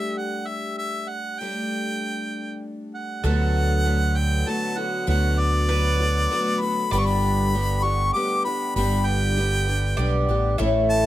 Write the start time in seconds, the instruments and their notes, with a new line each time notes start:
Already playing: twelve-string acoustic guitar G3 A3 D4 G4, harmonica E5
0.17 harmonica F#5
0.47 harmonica E5
0.78 harmonica E5
1.08 harmonica F#5
1.39 twelve-string acoustic guitar G3 A3 D4, harmonica G5
1.44 twelve-string acoustic guitar G4
2.94 harmonica F#5
3.24 fretless electric bass D2, twelve-string acoustic guitar D3 F#3 A3 B3 F#4, accordion D3 F#3 B3, mandolin A4, harmonica F#5
3.85 twelve-string acoustic guitar F#3 A3 B3
4.17 harmonica G5
4.47 twelve-string acoustic guitar F#3 A3 B3 F#4, harmonica A5
4.77 twelve-string acoustic guitar A3 B3 F#4, harmonica F#5
5.07 fretless electric bass D2, twelve-string acoustic guitar D3 F#3 A3 B3 F#4, harmonica F#5
5.39 harmonica D5
5.69 twelve-string acoustic guitar F#3 A3 B3 F#4, mandolin B4
6.00 twelve-string acoustic guitar A3 B3 F#4
6.30 twelve-string acoustic guitar F#3 A3 B3 F#4
6.61 twelve-string acoustic guitar A3 B3 F#4, harmonica B5
6.91 fretless electric bass G1, twelve-string acoustic guitar G2 D3 G3 B3 D4 G4, accordion G4, mandolin D5, harmonica B5
6.99 harmonica C#6
7.06 harmonica B5
7.54 twelve-string acoustic guitar G3 B3 D4 G4
7.83 twelve-string acoustic guitar G3 B3 D4 G4, harmonica C#6
8.13 twelve-string acoustic guitar G3 B3 D4 G4, harmonica D6
8.45 twelve-string acoustic guitar G3 B3 D4 G4, harmonica B5
8.75 fretless electric bass G1, twelve-string acoustic guitar G2 D3 G3 B3 D4 G4, harmonica B5
9.06 harmonica G5
9.37 twelve-string acoustic guitar G3 B3 D4 G4
9.68 twelve-string acoustic guitar G3 B3 D4 G4
9.97 fretless electric bass B1, twelve-string acoustic guitar G3 B3 D4 G4, mandolin D5
10.29 fretless electric bass A1, twelve-string acoustic guitar G3 B3 D4 G4
10.58 fretless electric bass A1, twelve-string acoustic guitar A2 A3 C#4 E4 A4, accordion E3 A3 E4, mandolin E5
10.90 harmonica A5